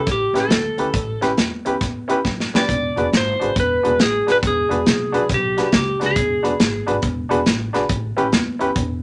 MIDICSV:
0, 0, Header, 1, 5, 480
1, 0, Start_track
1, 0, Tempo, 434783
1, 1033, Time_signature, 4, 2, 24, 8
1, 9968, End_track
2, 0, Start_track
2, 0, Title_t, "Electric slide guitar"
2, 0, Program_c, 0, 29
2, 0, Note_on_c, 0, 69, 95
2, 114, Note_off_c, 0, 69, 0
2, 127, Note_on_c, 0, 67, 85
2, 419, Note_off_c, 0, 67, 0
2, 442, Note_on_c, 0, 69, 71
2, 1333, Note_off_c, 0, 69, 0
2, 2832, Note_on_c, 0, 74, 93
2, 3417, Note_off_c, 0, 74, 0
2, 3500, Note_on_c, 0, 72, 93
2, 3964, Note_off_c, 0, 72, 0
2, 3971, Note_on_c, 0, 71, 89
2, 4439, Note_off_c, 0, 71, 0
2, 4443, Note_on_c, 0, 68, 84
2, 4742, Note_off_c, 0, 68, 0
2, 4766, Note_on_c, 0, 71, 76
2, 4821, Note_off_c, 0, 71, 0
2, 4937, Note_on_c, 0, 68, 91
2, 5823, Note_off_c, 0, 68, 0
2, 5898, Note_on_c, 0, 67, 86
2, 6348, Note_off_c, 0, 67, 0
2, 6362, Note_on_c, 0, 67, 77
2, 6630, Note_off_c, 0, 67, 0
2, 6691, Note_on_c, 0, 68, 78
2, 7574, Note_off_c, 0, 68, 0
2, 9968, End_track
3, 0, Start_track
3, 0, Title_t, "Upright piano"
3, 0, Program_c, 1, 0
3, 376, Note_on_c, 1, 61, 73
3, 378, Note_on_c, 1, 64, 71
3, 384, Note_on_c, 1, 67, 71
3, 395, Note_on_c, 1, 71, 84
3, 464, Note_off_c, 1, 61, 0
3, 465, Note_off_c, 1, 64, 0
3, 468, Note_off_c, 1, 67, 0
3, 473, Note_off_c, 1, 71, 0
3, 859, Note_on_c, 1, 61, 69
3, 869, Note_on_c, 1, 67, 59
3, 870, Note_on_c, 1, 64, 63
3, 875, Note_on_c, 1, 71, 80
3, 946, Note_off_c, 1, 61, 0
3, 951, Note_off_c, 1, 67, 0
3, 952, Note_off_c, 1, 64, 0
3, 954, Note_off_c, 1, 71, 0
3, 1339, Note_on_c, 1, 61, 84
3, 1344, Note_on_c, 1, 64, 76
3, 1348, Note_on_c, 1, 67, 79
3, 1352, Note_on_c, 1, 71, 95
3, 1427, Note_off_c, 1, 61, 0
3, 1430, Note_off_c, 1, 64, 0
3, 1432, Note_off_c, 1, 67, 0
3, 1434, Note_off_c, 1, 71, 0
3, 1822, Note_on_c, 1, 61, 73
3, 1827, Note_on_c, 1, 64, 69
3, 1837, Note_on_c, 1, 67, 74
3, 1844, Note_on_c, 1, 71, 86
3, 1910, Note_off_c, 1, 61, 0
3, 1912, Note_off_c, 1, 64, 0
3, 1917, Note_off_c, 1, 67, 0
3, 1921, Note_off_c, 1, 71, 0
3, 2294, Note_on_c, 1, 61, 84
3, 2304, Note_on_c, 1, 64, 85
3, 2309, Note_on_c, 1, 67, 80
3, 2325, Note_on_c, 1, 71, 97
3, 2387, Note_off_c, 1, 61, 0
3, 2391, Note_off_c, 1, 64, 0
3, 2394, Note_off_c, 1, 67, 0
3, 2402, Note_off_c, 1, 71, 0
3, 2803, Note_on_c, 1, 61, 66
3, 2813, Note_on_c, 1, 64, 60
3, 2815, Note_on_c, 1, 67, 63
3, 2819, Note_on_c, 1, 71, 76
3, 2882, Note_off_c, 1, 61, 0
3, 2887, Note_off_c, 1, 64, 0
3, 2888, Note_off_c, 1, 67, 0
3, 2890, Note_off_c, 1, 71, 0
3, 3269, Note_on_c, 1, 62, 69
3, 3277, Note_on_c, 1, 66, 66
3, 3287, Note_on_c, 1, 68, 64
3, 3290, Note_on_c, 1, 71, 82
3, 3355, Note_off_c, 1, 62, 0
3, 3359, Note_off_c, 1, 66, 0
3, 3364, Note_off_c, 1, 68, 0
3, 3365, Note_off_c, 1, 71, 0
3, 3748, Note_on_c, 1, 62, 67
3, 3758, Note_on_c, 1, 66, 61
3, 3770, Note_on_c, 1, 68, 62
3, 3774, Note_on_c, 1, 71, 67
3, 3834, Note_off_c, 1, 62, 0
3, 3840, Note_off_c, 1, 66, 0
3, 3845, Note_off_c, 1, 68, 0
3, 3848, Note_off_c, 1, 71, 0
3, 4231, Note_on_c, 1, 62, 72
3, 4232, Note_on_c, 1, 66, 67
3, 4247, Note_on_c, 1, 68, 67
3, 4249, Note_on_c, 1, 71, 78
3, 4316, Note_off_c, 1, 62, 0
3, 4316, Note_off_c, 1, 66, 0
3, 4324, Note_off_c, 1, 68, 0
3, 4325, Note_off_c, 1, 71, 0
3, 4708, Note_on_c, 1, 62, 68
3, 4715, Note_on_c, 1, 66, 64
3, 4718, Note_on_c, 1, 68, 68
3, 4726, Note_on_c, 1, 71, 74
3, 4795, Note_off_c, 1, 62, 0
3, 4798, Note_off_c, 1, 66, 0
3, 4799, Note_off_c, 1, 68, 0
3, 4803, Note_off_c, 1, 71, 0
3, 5176, Note_on_c, 1, 62, 75
3, 5187, Note_on_c, 1, 66, 64
3, 5191, Note_on_c, 1, 68, 69
3, 5199, Note_on_c, 1, 71, 77
3, 5268, Note_off_c, 1, 62, 0
3, 5274, Note_off_c, 1, 66, 0
3, 5275, Note_off_c, 1, 68, 0
3, 5280, Note_off_c, 1, 71, 0
3, 5657, Note_on_c, 1, 62, 89
3, 5657, Note_on_c, 1, 66, 76
3, 5670, Note_on_c, 1, 68, 79
3, 5678, Note_on_c, 1, 71, 89
3, 5748, Note_off_c, 1, 62, 0
3, 5748, Note_off_c, 1, 66, 0
3, 5754, Note_off_c, 1, 68, 0
3, 5759, Note_off_c, 1, 71, 0
3, 6151, Note_on_c, 1, 62, 69
3, 6152, Note_on_c, 1, 66, 68
3, 6162, Note_on_c, 1, 68, 64
3, 6164, Note_on_c, 1, 71, 82
3, 6235, Note_off_c, 1, 62, 0
3, 6235, Note_off_c, 1, 66, 0
3, 6240, Note_off_c, 1, 68, 0
3, 6241, Note_off_c, 1, 71, 0
3, 6618, Note_on_c, 1, 62, 72
3, 6624, Note_on_c, 1, 66, 62
3, 6634, Note_on_c, 1, 68, 65
3, 6641, Note_on_c, 1, 71, 72
3, 6708, Note_off_c, 1, 62, 0
3, 6711, Note_off_c, 1, 66, 0
3, 6716, Note_off_c, 1, 68, 0
3, 6719, Note_off_c, 1, 71, 0
3, 7096, Note_on_c, 1, 62, 77
3, 7098, Note_on_c, 1, 66, 69
3, 7111, Note_on_c, 1, 71, 83
3, 7112, Note_on_c, 1, 68, 63
3, 7186, Note_off_c, 1, 62, 0
3, 7187, Note_off_c, 1, 66, 0
3, 7194, Note_off_c, 1, 68, 0
3, 7194, Note_off_c, 1, 71, 0
3, 7578, Note_on_c, 1, 62, 81
3, 7581, Note_on_c, 1, 66, 68
3, 7589, Note_on_c, 1, 71, 87
3, 7590, Note_on_c, 1, 68, 70
3, 7667, Note_off_c, 1, 62, 0
3, 7668, Note_off_c, 1, 66, 0
3, 7672, Note_off_c, 1, 68, 0
3, 7672, Note_off_c, 1, 71, 0
3, 8050, Note_on_c, 1, 62, 90
3, 8059, Note_on_c, 1, 66, 83
3, 8064, Note_on_c, 1, 68, 85
3, 8069, Note_on_c, 1, 71, 97
3, 8142, Note_off_c, 1, 62, 0
3, 8146, Note_off_c, 1, 66, 0
3, 8149, Note_off_c, 1, 68, 0
3, 8152, Note_off_c, 1, 71, 0
3, 8535, Note_on_c, 1, 62, 88
3, 8542, Note_on_c, 1, 68, 77
3, 8545, Note_on_c, 1, 66, 75
3, 8548, Note_on_c, 1, 71, 89
3, 8624, Note_off_c, 1, 62, 0
3, 8628, Note_off_c, 1, 68, 0
3, 8629, Note_off_c, 1, 66, 0
3, 8630, Note_off_c, 1, 71, 0
3, 9015, Note_on_c, 1, 61, 87
3, 9016, Note_on_c, 1, 64, 71
3, 9022, Note_on_c, 1, 67, 81
3, 9031, Note_on_c, 1, 71, 93
3, 9103, Note_off_c, 1, 61, 0
3, 9104, Note_off_c, 1, 64, 0
3, 9107, Note_off_c, 1, 67, 0
3, 9112, Note_off_c, 1, 71, 0
3, 9486, Note_on_c, 1, 61, 77
3, 9487, Note_on_c, 1, 64, 73
3, 9504, Note_on_c, 1, 67, 73
3, 9506, Note_on_c, 1, 71, 93
3, 9578, Note_off_c, 1, 61, 0
3, 9579, Note_off_c, 1, 64, 0
3, 9587, Note_off_c, 1, 67, 0
3, 9589, Note_off_c, 1, 71, 0
3, 9968, End_track
4, 0, Start_track
4, 0, Title_t, "Upright bass"
4, 0, Program_c, 2, 32
4, 76, Note_on_c, 2, 33, 80
4, 291, Note_off_c, 2, 33, 0
4, 368, Note_on_c, 2, 33, 82
4, 491, Note_off_c, 2, 33, 0
4, 536, Note_on_c, 2, 38, 88
4, 758, Note_off_c, 2, 38, 0
4, 857, Note_on_c, 2, 38, 81
4, 978, Note_off_c, 2, 38, 0
4, 1033, Note_on_c, 2, 33, 86
4, 1250, Note_off_c, 2, 33, 0
4, 1354, Note_on_c, 2, 33, 80
4, 1469, Note_off_c, 2, 33, 0
4, 1517, Note_on_c, 2, 40, 88
4, 1734, Note_off_c, 2, 40, 0
4, 1837, Note_on_c, 2, 40, 74
4, 1952, Note_off_c, 2, 40, 0
4, 2005, Note_on_c, 2, 40, 87
4, 2337, Note_off_c, 2, 40, 0
4, 2478, Note_on_c, 2, 42, 82
4, 2695, Note_off_c, 2, 42, 0
4, 2799, Note_on_c, 2, 42, 75
4, 2914, Note_off_c, 2, 42, 0
4, 2967, Note_on_c, 2, 28, 88
4, 3181, Note_off_c, 2, 28, 0
4, 3283, Note_on_c, 2, 28, 85
4, 3396, Note_off_c, 2, 28, 0
4, 3450, Note_on_c, 2, 32, 86
4, 3663, Note_off_c, 2, 32, 0
4, 3768, Note_on_c, 2, 32, 81
4, 3880, Note_off_c, 2, 32, 0
4, 3935, Note_on_c, 2, 28, 87
4, 4147, Note_off_c, 2, 28, 0
4, 4256, Note_on_c, 2, 28, 85
4, 4365, Note_off_c, 2, 28, 0
4, 4403, Note_on_c, 2, 33, 85
4, 4618, Note_off_c, 2, 33, 0
4, 4720, Note_on_c, 2, 33, 79
4, 4835, Note_off_c, 2, 33, 0
4, 4892, Note_on_c, 2, 28, 86
4, 5104, Note_off_c, 2, 28, 0
4, 5197, Note_on_c, 2, 28, 93
4, 5312, Note_off_c, 2, 28, 0
4, 5369, Note_on_c, 2, 35, 92
4, 5581, Note_off_c, 2, 35, 0
4, 5676, Note_on_c, 2, 35, 77
4, 5791, Note_off_c, 2, 35, 0
4, 5846, Note_on_c, 2, 35, 92
4, 6177, Note_off_c, 2, 35, 0
4, 6323, Note_on_c, 2, 37, 86
4, 6537, Note_off_c, 2, 37, 0
4, 6644, Note_on_c, 2, 37, 83
4, 6756, Note_off_c, 2, 37, 0
4, 6802, Note_on_c, 2, 28, 82
4, 7016, Note_off_c, 2, 28, 0
4, 7110, Note_on_c, 2, 28, 79
4, 7226, Note_off_c, 2, 28, 0
4, 7284, Note_on_c, 2, 32, 87
4, 7497, Note_off_c, 2, 32, 0
4, 7594, Note_on_c, 2, 32, 82
4, 7709, Note_off_c, 2, 32, 0
4, 7757, Note_on_c, 2, 28, 85
4, 7972, Note_off_c, 2, 28, 0
4, 8065, Note_on_c, 2, 28, 87
4, 8182, Note_off_c, 2, 28, 0
4, 8246, Note_on_c, 2, 33, 92
4, 8458, Note_off_c, 2, 33, 0
4, 8553, Note_on_c, 2, 33, 85
4, 8667, Note_off_c, 2, 33, 0
4, 8718, Note_on_c, 2, 33, 82
4, 8932, Note_off_c, 2, 33, 0
4, 9027, Note_on_c, 2, 33, 83
4, 9143, Note_off_c, 2, 33, 0
4, 9196, Note_on_c, 2, 40, 89
4, 9410, Note_off_c, 2, 40, 0
4, 9510, Note_on_c, 2, 40, 81
4, 9624, Note_off_c, 2, 40, 0
4, 9670, Note_on_c, 2, 28, 89
4, 9968, Note_off_c, 2, 28, 0
4, 9968, End_track
5, 0, Start_track
5, 0, Title_t, "Drums"
5, 73, Note_on_c, 9, 42, 77
5, 75, Note_on_c, 9, 36, 107
5, 78, Note_on_c, 9, 38, 29
5, 183, Note_off_c, 9, 42, 0
5, 186, Note_off_c, 9, 36, 0
5, 188, Note_off_c, 9, 38, 0
5, 391, Note_on_c, 9, 42, 58
5, 396, Note_on_c, 9, 38, 32
5, 502, Note_off_c, 9, 42, 0
5, 506, Note_off_c, 9, 38, 0
5, 556, Note_on_c, 9, 42, 81
5, 561, Note_on_c, 9, 38, 108
5, 667, Note_off_c, 9, 42, 0
5, 671, Note_off_c, 9, 38, 0
5, 863, Note_on_c, 9, 42, 63
5, 974, Note_off_c, 9, 42, 0
5, 1034, Note_on_c, 9, 42, 83
5, 1035, Note_on_c, 9, 36, 112
5, 1145, Note_off_c, 9, 36, 0
5, 1145, Note_off_c, 9, 42, 0
5, 1350, Note_on_c, 9, 42, 62
5, 1355, Note_on_c, 9, 38, 26
5, 1461, Note_off_c, 9, 42, 0
5, 1465, Note_off_c, 9, 38, 0
5, 1518, Note_on_c, 9, 42, 78
5, 1522, Note_on_c, 9, 38, 100
5, 1628, Note_off_c, 9, 42, 0
5, 1633, Note_off_c, 9, 38, 0
5, 1830, Note_on_c, 9, 42, 58
5, 1940, Note_off_c, 9, 42, 0
5, 1998, Note_on_c, 9, 42, 79
5, 1999, Note_on_c, 9, 36, 97
5, 2002, Note_on_c, 9, 38, 30
5, 2108, Note_off_c, 9, 42, 0
5, 2109, Note_off_c, 9, 36, 0
5, 2113, Note_off_c, 9, 38, 0
5, 2314, Note_on_c, 9, 42, 64
5, 2424, Note_off_c, 9, 42, 0
5, 2481, Note_on_c, 9, 36, 80
5, 2484, Note_on_c, 9, 38, 57
5, 2592, Note_off_c, 9, 36, 0
5, 2594, Note_off_c, 9, 38, 0
5, 2653, Note_on_c, 9, 38, 63
5, 2764, Note_off_c, 9, 38, 0
5, 2815, Note_on_c, 9, 38, 102
5, 2925, Note_off_c, 9, 38, 0
5, 2967, Note_on_c, 9, 36, 100
5, 2974, Note_on_c, 9, 42, 84
5, 3077, Note_off_c, 9, 36, 0
5, 3085, Note_off_c, 9, 42, 0
5, 3283, Note_on_c, 9, 42, 50
5, 3393, Note_off_c, 9, 42, 0
5, 3457, Note_on_c, 9, 42, 72
5, 3461, Note_on_c, 9, 38, 100
5, 3567, Note_off_c, 9, 42, 0
5, 3572, Note_off_c, 9, 38, 0
5, 3770, Note_on_c, 9, 42, 55
5, 3881, Note_off_c, 9, 42, 0
5, 3931, Note_on_c, 9, 36, 108
5, 3933, Note_on_c, 9, 42, 80
5, 4041, Note_off_c, 9, 36, 0
5, 4044, Note_off_c, 9, 42, 0
5, 4248, Note_on_c, 9, 42, 55
5, 4359, Note_off_c, 9, 42, 0
5, 4410, Note_on_c, 9, 42, 69
5, 4415, Note_on_c, 9, 38, 111
5, 4521, Note_off_c, 9, 42, 0
5, 4525, Note_off_c, 9, 38, 0
5, 4726, Note_on_c, 9, 42, 61
5, 4731, Note_on_c, 9, 38, 32
5, 4837, Note_off_c, 9, 42, 0
5, 4841, Note_off_c, 9, 38, 0
5, 4888, Note_on_c, 9, 36, 115
5, 4889, Note_on_c, 9, 42, 80
5, 4998, Note_off_c, 9, 36, 0
5, 5000, Note_off_c, 9, 42, 0
5, 5204, Note_on_c, 9, 42, 51
5, 5314, Note_off_c, 9, 42, 0
5, 5369, Note_on_c, 9, 42, 88
5, 5373, Note_on_c, 9, 38, 112
5, 5479, Note_off_c, 9, 42, 0
5, 5484, Note_off_c, 9, 38, 0
5, 5677, Note_on_c, 9, 42, 62
5, 5787, Note_off_c, 9, 42, 0
5, 5844, Note_on_c, 9, 42, 88
5, 5846, Note_on_c, 9, 36, 106
5, 5848, Note_on_c, 9, 38, 33
5, 5954, Note_off_c, 9, 42, 0
5, 5956, Note_off_c, 9, 36, 0
5, 5959, Note_off_c, 9, 38, 0
5, 6158, Note_on_c, 9, 42, 70
5, 6162, Note_on_c, 9, 38, 32
5, 6268, Note_off_c, 9, 42, 0
5, 6273, Note_off_c, 9, 38, 0
5, 6319, Note_on_c, 9, 42, 90
5, 6324, Note_on_c, 9, 36, 72
5, 6324, Note_on_c, 9, 38, 106
5, 6430, Note_off_c, 9, 42, 0
5, 6434, Note_off_c, 9, 36, 0
5, 6434, Note_off_c, 9, 38, 0
5, 6636, Note_on_c, 9, 42, 60
5, 6640, Note_on_c, 9, 38, 32
5, 6746, Note_off_c, 9, 42, 0
5, 6751, Note_off_c, 9, 38, 0
5, 6799, Note_on_c, 9, 42, 87
5, 6802, Note_on_c, 9, 36, 106
5, 6909, Note_off_c, 9, 42, 0
5, 6912, Note_off_c, 9, 36, 0
5, 7119, Note_on_c, 9, 42, 58
5, 7229, Note_off_c, 9, 42, 0
5, 7284, Note_on_c, 9, 42, 80
5, 7288, Note_on_c, 9, 38, 108
5, 7394, Note_off_c, 9, 42, 0
5, 7399, Note_off_c, 9, 38, 0
5, 7594, Note_on_c, 9, 42, 52
5, 7704, Note_off_c, 9, 42, 0
5, 7752, Note_on_c, 9, 42, 80
5, 7758, Note_on_c, 9, 36, 99
5, 7862, Note_off_c, 9, 42, 0
5, 7868, Note_off_c, 9, 36, 0
5, 8072, Note_on_c, 9, 42, 61
5, 8183, Note_off_c, 9, 42, 0
5, 8235, Note_on_c, 9, 42, 73
5, 8240, Note_on_c, 9, 38, 113
5, 8346, Note_off_c, 9, 42, 0
5, 8350, Note_off_c, 9, 38, 0
5, 8550, Note_on_c, 9, 42, 57
5, 8554, Note_on_c, 9, 38, 31
5, 8660, Note_off_c, 9, 42, 0
5, 8665, Note_off_c, 9, 38, 0
5, 8713, Note_on_c, 9, 42, 81
5, 8716, Note_on_c, 9, 36, 109
5, 8823, Note_off_c, 9, 42, 0
5, 8826, Note_off_c, 9, 36, 0
5, 9029, Note_on_c, 9, 42, 54
5, 9140, Note_off_c, 9, 42, 0
5, 9190, Note_on_c, 9, 42, 79
5, 9194, Note_on_c, 9, 38, 111
5, 9300, Note_off_c, 9, 42, 0
5, 9305, Note_off_c, 9, 38, 0
5, 9501, Note_on_c, 9, 42, 57
5, 9612, Note_off_c, 9, 42, 0
5, 9668, Note_on_c, 9, 42, 89
5, 9669, Note_on_c, 9, 36, 102
5, 9778, Note_off_c, 9, 42, 0
5, 9780, Note_off_c, 9, 36, 0
5, 9968, End_track
0, 0, End_of_file